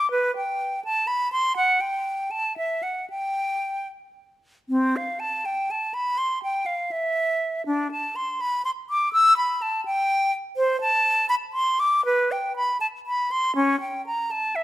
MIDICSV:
0, 0, Header, 1, 2, 480
1, 0, Start_track
1, 0, Tempo, 489796
1, 108, Time_signature, 6, 3, 24, 8
1, 2023, Tempo, 524017
1, 4903, Tempo, 493421
1, 7783, Tempo, 479233
1, 10663, Tempo, 501253
1, 14101, End_track
2, 0, Start_track
2, 0, Title_t, "Flute"
2, 0, Program_c, 0, 73
2, 0, Note_on_c, 0, 86, 76
2, 100, Note_off_c, 0, 86, 0
2, 106, Note_on_c, 0, 71, 78
2, 345, Note_off_c, 0, 71, 0
2, 357, Note_on_c, 0, 79, 58
2, 814, Note_off_c, 0, 79, 0
2, 828, Note_on_c, 0, 81, 79
2, 1050, Note_on_c, 0, 83, 69
2, 1065, Note_off_c, 0, 81, 0
2, 1290, Note_off_c, 0, 83, 0
2, 1295, Note_on_c, 0, 84, 77
2, 1529, Note_off_c, 0, 84, 0
2, 1533, Note_on_c, 0, 78, 75
2, 1769, Note_on_c, 0, 79, 61
2, 1783, Note_off_c, 0, 78, 0
2, 2246, Note_on_c, 0, 81, 67
2, 2259, Note_off_c, 0, 79, 0
2, 2484, Note_off_c, 0, 81, 0
2, 2490, Note_on_c, 0, 76, 60
2, 2721, Note_on_c, 0, 78, 51
2, 2735, Note_off_c, 0, 76, 0
2, 2964, Note_off_c, 0, 78, 0
2, 2969, Note_on_c, 0, 79, 61
2, 3686, Note_off_c, 0, 79, 0
2, 4430, Note_on_c, 0, 60, 62
2, 4678, Note_on_c, 0, 77, 58
2, 4692, Note_off_c, 0, 60, 0
2, 4891, Note_on_c, 0, 81, 60
2, 4905, Note_off_c, 0, 77, 0
2, 5140, Note_on_c, 0, 79, 68
2, 5155, Note_off_c, 0, 81, 0
2, 5388, Note_on_c, 0, 81, 59
2, 5403, Note_off_c, 0, 79, 0
2, 5613, Note_on_c, 0, 83, 64
2, 5628, Note_off_c, 0, 81, 0
2, 5845, Note_on_c, 0, 84, 65
2, 5859, Note_off_c, 0, 83, 0
2, 6085, Note_off_c, 0, 84, 0
2, 6091, Note_on_c, 0, 79, 62
2, 6313, Note_on_c, 0, 77, 54
2, 6328, Note_off_c, 0, 79, 0
2, 6561, Note_on_c, 0, 76, 66
2, 6575, Note_off_c, 0, 77, 0
2, 7285, Note_off_c, 0, 76, 0
2, 7291, Note_on_c, 0, 62, 68
2, 7529, Note_off_c, 0, 62, 0
2, 7535, Note_on_c, 0, 81, 64
2, 7772, Note_on_c, 0, 84, 72
2, 7786, Note_off_c, 0, 81, 0
2, 8019, Note_on_c, 0, 83, 76
2, 8034, Note_off_c, 0, 84, 0
2, 8255, Note_off_c, 0, 83, 0
2, 8261, Note_on_c, 0, 84, 70
2, 8321, Note_off_c, 0, 84, 0
2, 8514, Note_on_c, 0, 86, 73
2, 8739, Note_off_c, 0, 86, 0
2, 8745, Note_on_c, 0, 88, 84
2, 8980, Note_off_c, 0, 88, 0
2, 8986, Note_on_c, 0, 83, 69
2, 9233, Note_on_c, 0, 81, 63
2, 9248, Note_off_c, 0, 83, 0
2, 9463, Note_off_c, 0, 81, 0
2, 9469, Note_on_c, 0, 79, 90
2, 9936, Note_off_c, 0, 79, 0
2, 10183, Note_on_c, 0, 72, 82
2, 10417, Note_off_c, 0, 72, 0
2, 10427, Note_on_c, 0, 81, 88
2, 10891, Note_off_c, 0, 81, 0
2, 10898, Note_on_c, 0, 83, 85
2, 10955, Note_off_c, 0, 83, 0
2, 11127, Note_on_c, 0, 84, 76
2, 11381, Note_on_c, 0, 86, 83
2, 11395, Note_off_c, 0, 84, 0
2, 11622, Note_off_c, 0, 86, 0
2, 11627, Note_on_c, 0, 71, 88
2, 11880, Note_on_c, 0, 79, 71
2, 11894, Note_off_c, 0, 71, 0
2, 12110, Note_off_c, 0, 79, 0
2, 12115, Note_on_c, 0, 83, 81
2, 12341, Note_off_c, 0, 83, 0
2, 12347, Note_on_c, 0, 81, 79
2, 12405, Note_off_c, 0, 81, 0
2, 12599, Note_on_c, 0, 83, 79
2, 12835, Note_on_c, 0, 84, 80
2, 12849, Note_off_c, 0, 83, 0
2, 13063, Note_off_c, 0, 84, 0
2, 13070, Note_on_c, 0, 61, 83
2, 13294, Note_off_c, 0, 61, 0
2, 13307, Note_on_c, 0, 79, 64
2, 13534, Note_off_c, 0, 79, 0
2, 13552, Note_on_c, 0, 82, 69
2, 13788, Note_on_c, 0, 81, 70
2, 13802, Note_off_c, 0, 82, 0
2, 14024, Note_on_c, 0, 76, 59
2, 14038, Note_off_c, 0, 81, 0
2, 14101, Note_off_c, 0, 76, 0
2, 14101, End_track
0, 0, End_of_file